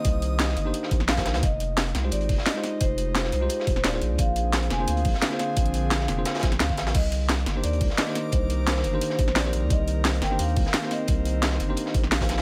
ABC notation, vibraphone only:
X:1
M:4/4
L:1/8
Q:1/4=174
K:Cm
V:1 name="Vibraphone"
e4- e z f2 | e3 z d2 e2 | c3 c3 d2 | f3 a f3 f- |
f4- f z f2 | e3 z d2 e2 | c3 c3 z2 | e3 g f3 e- |
e4- e z f2 |]